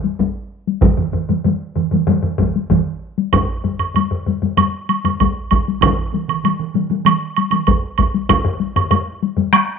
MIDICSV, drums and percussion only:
0, 0, Header, 1, 3, 480
1, 0, Start_track
1, 0, Tempo, 626305
1, 634, Time_signature, 4, 2, 24, 8
1, 3991, Tempo, 618557
1, 7546, End_track
2, 0, Start_track
2, 0, Title_t, "Taiko and cinematic ensemble drums"
2, 31, Note_on_c, 9, 48, 48
2, 108, Note_off_c, 9, 48, 0
2, 147, Note_on_c, 9, 41, 55
2, 157, Note_on_c, 9, 48, 57
2, 224, Note_off_c, 9, 41, 0
2, 234, Note_off_c, 9, 48, 0
2, 517, Note_on_c, 9, 48, 46
2, 594, Note_off_c, 9, 48, 0
2, 622, Note_on_c, 9, 45, 66
2, 624, Note_on_c, 9, 47, 62
2, 628, Note_on_c, 9, 41, 77
2, 640, Note_on_c, 9, 48, 62
2, 699, Note_off_c, 9, 45, 0
2, 700, Note_off_c, 9, 47, 0
2, 705, Note_off_c, 9, 41, 0
2, 717, Note_off_c, 9, 48, 0
2, 745, Note_on_c, 9, 47, 58
2, 747, Note_on_c, 9, 45, 64
2, 822, Note_off_c, 9, 47, 0
2, 823, Note_off_c, 9, 45, 0
2, 860, Note_on_c, 9, 47, 56
2, 867, Note_on_c, 9, 45, 63
2, 937, Note_off_c, 9, 47, 0
2, 944, Note_off_c, 9, 45, 0
2, 988, Note_on_c, 9, 45, 58
2, 990, Note_on_c, 9, 47, 62
2, 998, Note_on_c, 9, 48, 46
2, 1065, Note_off_c, 9, 45, 0
2, 1067, Note_off_c, 9, 47, 0
2, 1075, Note_off_c, 9, 48, 0
2, 1107, Note_on_c, 9, 45, 62
2, 1110, Note_on_c, 9, 47, 65
2, 1119, Note_on_c, 9, 48, 57
2, 1183, Note_off_c, 9, 45, 0
2, 1186, Note_off_c, 9, 47, 0
2, 1196, Note_off_c, 9, 48, 0
2, 1346, Note_on_c, 9, 45, 58
2, 1351, Note_on_c, 9, 47, 62
2, 1422, Note_off_c, 9, 45, 0
2, 1428, Note_off_c, 9, 47, 0
2, 1465, Note_on_c, 9, 45, 56
2, 1473, Note_on_c, 9, 47, 65
2, 1483, Note_on_c, 9, 48, 47
2, 1542, Note_off_c, 9, 45, 0
2, 1549, Note_off_c, 9, 47, 0
2, 1560, Note_off_c, 9, 48, 0
2, 1586, Note_on_c, 9, 45, 87
2, 1592, Note_on_c, 9, 47, 87
2, 1600, Note_on_c, 9, 48, 63
2, 1662, Note_off_c, 9, 45, 0
2, 1669, Note_off_c, 9, 47, 0
2, 1677, Note_off_c, 9, 48, 0
2, 1705, Note_on_c, 9, 45, 64
2, 1714, Note_on_c, 9, 47, 59
2, 1782, Note_off_c, 9, 45, 0
2, 1791, Note_off_c, 9, 47, 0
2, 1825, Note_on_c, 9, 45, 92
2, 1832, Note_on_c, 9, 47, 77
2, 1836, Note_on_c, 9, 41, 51
2, 1847, Note_on_c, 9, 48, 47
2, 1902, Note_off_c, 9, 45, 0
2, 1909, Note_off_c, 9, 47, 0
2, 1912, Note_off_c, 9, 41, 0
2, 1923, Note_off_c, 9, 48, 0
2, 1959, Note_on_c, 9, 48, 51
2, 2036, Note_off_c, 9, 48, 0
2, 2068, Note_on_c, 9, 45, 83
2, 2072, Note_on_c, 9, 41, 51
2, 2075, Note_on_c, 9, 48, 61
2, 2078, Note_on_c, 9, 47, 93
2, 2144, Note_off_c, 9, 45, 0
2, 2149, Note_off_c, 9, 41, 0
2, 2151, Note_off_c, 9, 48, 0
2, 2155, Note_off_c, 9, 47, 0
2, 2435, Note_on_c, 9, 48, 53
2, 2512, Note_off_c, 9, 48, 0
2, 2549, Note_on_c, 9, 45, 83
2, 2554, Note_on_c, 9, 41, 88
2, 2559, Note_on_c, 9, 48, 63
2, 2625, Note_off_c, 9, 45, 0
2, 2631, Note_off_c, 9, 41, 0
2, 2636, Note_off_c, 9, 48, 0
2, 2789, Note_on_c, 9, 45, 59
2, 2792, Note_on_c, 9, 48, 45
2, 2865, Note_off_c, 9, 45, 0
2, 2869, Note_off_c, 9, 48, 0
2, 2906, Note_on_c, 9, 45, 56
2, 2983, Note_off_c, 9, 45, 0
2, 3022, Note_on_c, 9, 45, 60
2, 3039, Note_on_c, 9, 48, 59
2, 3099, Note_off_c, 9, 45, 0
2, 3115, Note_off_c, 9, 48, 0
2, 3150, Note_on_c, 9, 45, 63
2, 3227, Note_off_c, 9, 45, 0
2, 3268, Note_on_c, 9, 45, 58
2, 3280, Note_on_c, 9, 48, 51
2, 3344, Note_off_c, 9, 45, 0
2, 3357, Note_off_c, 9, 48, 0
2, 3387, Note_on_c, 9, 45, 58
2, 3396, Note_on_c, 9, 48, 48
2, 3464, Note_off_c, 9, 45, 0
2, 3473, Note_off_c, 9, 48, 0
2, 3504, Note_on_c, 9, 45, 80
2, 3510, Note_on_c, 9, 48, 62
2, 3580, Note_off_c, 9, 45, 0
2, 3586, Note_off_c, 9, 48, 0
2, 3748, Note_on_c, 9, 48, 46
2, 3825, Note_off_c, 9, 48, 0
2, 3866, Note_on_c, 9, 45, 64
2, 3872, Note_on_c, 9, 48, 51
2, 3943, Note_off_c, 9, 45, 0
2, 3948, Note_off_c, 9, 48, 0
2, 3990, Note_on_c, 9, 41, 65
2, 3996, Note_on_c, 9, 48, 65
2, 4067, Note_off_c, 9, 41, 0
2, 4074, Note_off_c, 9, 48, 0
2, 4230, Note_on_c, 9, 48, 52
2, 4237, Note_on_c, 9, 41, 64
2, 4307, Note_off_c, 9, 48, 0
2, 4314, Note_off_c, 9, 41, 0
2, 4359, Note_on_c, 9, 48, 47
2, 4436, Note_off_c, 9, 48, 0
2, 4462, Note_on_c, 9, 47, 90
2, 4473, Note_on_c, 9, 41, 99
2, 4476, Note_on_c, 9, 48, 61
2, 4539, Note_off_c, 9, 47, 0
2, 4551, Note_off_c, 9, 41, 0
2, 4553, Note_off_c, 9, 48, 0
2, 4705, Note_on_c, 9, 47, 60
2, 4714, Note_on_c, 9, 48, 45
2, 4783, Note_off_c, 9, 47, 0
2, 4792, Note_off_c, 9, 48, 0
2, 4824, Note_on_c, 9, 47, 61
2, 4902, Note_off_c, 9, 47, 0
2, 4946, Note_on_c, 9, 47, 66
2, 4955, Note_on_c, 9, 48, 57
2, 5024, Note_off_c, 9, 47, 0
2, 5033, Note_off_c, 9, 48, 0
2, 5066, Note_on_c, 9, 47, 67
2, 5144, Note_off_c, 9, 47, 0
2, 5183, Note_on_c, 9, 47, 67
2, 5190, Note_on_c, 9, 48, 56
2, 5260, Note_off_c, 9, 47, 0
2, 5268, Note_off_c, 9, 48, 0
2, 5303, Note_on_c, 9, 47, 69
2, 5313, Note_on_c, 9, 48, 48
2, 5380, Note_off_c, 9, 47, 0
2, 5390, Note_off_c, 9, 48, 0
2, 5420, Note_on_c, 9, 47, 93
2, 5429, Note_on_c, 9, 48, 64
2, 5498, Note_off_c, 9, 47, 0
2, 5507, Note_off_c, 9, 48, 0
2, 5674, Note_on_c, 9, 48, 49
2, 5752, Note_off_c, 9, 48, 0
2, 5778, Note_on_c, 9, 47, 66
2, 5789, Note_on_c, 9, 48, 53
2, 5855, Note_off_c, 9, 47, 0
2, 5866, Note_off_c, 9, 48, 0
2, 5905, Note_on_c, 9, 41, 75
2, 5907, Note_on_c, 9, 48, 61
2, 5983, Note_off_c, 9, 41, 0
2, 5985, Note_off_c, 9, 48, 0
2, 6146, Note_on_c, 9, 48, 50
2, 6151, Note_on_c, 9, 41, 67
2, 6224, Note_off_c, 9, 48, 0
2, 6229, Note_off_c, 9, 41, 0
2, 6270, Note_on_c, 9, 48, 51
2, 6347, Note_off_c, 9, 48, 0
2, 6385, Note_on_c, 9, 41, 103
2, 6390, Note_on_c, 9, 48, 66
2, 6463, Note_off_c, 9, 41, 0
2, 6468, Note_off_c, 9, 48, 0
2, 6504, Note_on_c, 9, 45, 89
2, 6582, Note_off_c, 9, 45, 0
2, 6622, Note_on_c, 9, 48, 51
2, 6700, Note_off_c, 9, 48, 0
2, 6748, Note_on_c, 9, 45, 89
2, 6825, Note_off_c, 9, 45, 0
2, 6862, Note_on_c, 9, 45, 99
2, 6869, Note_on_c, 9, 48, 63
2, 6939, Note_off_c, 9, 45, 0
2, 6947, Note_off_c, 9, 48, 0
2, 7109, Note_on_c, 9, 48, 54
2, 7187, Note_off_c, 9, 48, 0
2, 7218, Note_on_c, 9, 45, 62
2, 7228, Note_on_c, 9, 48, 55
2, 7295, Note_off_c, 9, 45, 0
2, 7305, Note_off_c, 9, 48, 0
2, 7342, Note_on_c, 9, 37, 63
2, 7342, Note_on_c, 9, 48, 71
2, 7420, Note_off_c, 9, 37, 0
2, 7420, Note_off_c, 9, 48, 0
2, 7546, End_track
3, 0, Start_track
3, 0, Title_t, "Drums"
3, 2550, Note_on_c, 9, 76, 50
3, 2627, Note_off_c, 9, 76, 0
3, 2908, Note_on_c, 9, 76, 39
3, 2985, Note_off_c, 9, 76, 0
3, 3033, Note_on_c, 9, 76, 41
3, 3109, Note_off_c, 9, 76, 0
3, 3506, Note_on_c, 9, 76, 48
3, 3583, Note_off_c, 9, 76, 0
3, 3749, Note_on_c, 9, 76, 40
3, 3826, Note_off_c, 9, 76, 0
3, 3870, Note_on_c, 9, 76, 40
3, 3947, Note_off_c, 9, 76, 0
3, 3987, Note_on_c, 9, 76, 43
3, 4065, Note_off_c, 9, 76, 0
3, 4224, Note_on_c, 9, 76, 42
3, 4302, Note_off_c, 9, 76, 0
3, 4468, Note_on_c, 9, 76, 55
3, 4546, Note_off_c, 9, 76, 0
3, 4834, Note_on_c, 9, 76, 42
3, 4911, Note_off_c, 9, 76, 0
3, 4954, Note_on_c, 9, 76, 44
3, 5032, Note_off_c, 9, 76, 0
3, 5430, Note_on_c, 9, 76, 57
3, 5508, Note_off_c, 9, 76, 0
3, 5665, Note_on_c, 9, 76, 46
3, 5743, Note_off_c, 9, 76, 0
3, 5779, Note_on_c, 9, 76, 43
3, 5857, Note_off_c, 9, 76, 0
3, 5901, Note_on_c, 9, 76, 41
3, 5978, Note_off_c, 9, 76, 0
3, 6140, Note_on_c, 9, 76, 46
3, 6218, Note_off_c, 9, 76, 0
3, 6387, Note_on_c, 9, 76, 57
3, 6464, Note_off_c, 9, 76, 0
3, 6750, Note_on_c, 9, 76, 45
3, 6827, Note_off_c, 9, 76, 0
3, 6864, Note_on_c, 9, 76, 47
3, 6942, Note_off_c, 9, 76, 0
3, 7348, Note_on_c, 9, 76, 59
3, 7425, Note_off_c, 9, 76, 0
3, 7546, End_track
0, 0, End_of_file